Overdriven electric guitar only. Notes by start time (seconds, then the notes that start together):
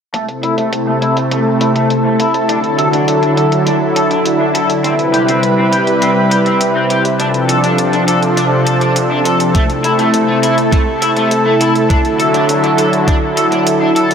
0.14 A3
0.43 E4
0.58 A3
0.87 A3
1.02 E4
1.31 A3
1.61 E4
1.75 A3
2.05 A3
2.20 E4
2.49 D4
2.78 A4
2.93 D4
3.22 D4
3.37 A4
3.67 D4
3.96 A4
4.11 D4
4.40 D4
4.55 A4
4.84 C4
5.14 G4
5.28 C4
5.58 C4
5.72 G4
6.02 C4
6.31 G4
6.46 C4
6.75 C4
6.90 G4
7.20 D4
7.49 A4
7.64 D4
7.93 D4
8.08 A4
8.37 D4
8.67 A4
8.81 D4
9.11 D4
9.25 A4
9.55 A3
9.84 E4
9.99 A3
10.28 A3
10.43 E4
10.72 A3
11.02 E4
11.17 A3
11.46 A3
11.61 E4
11.90 D4
12.19 A4
12.34 D4
12.64 D4
12.78 A4
13.08 D4
13.37 A4
13.52 D4
13.81 D4
13.96 A4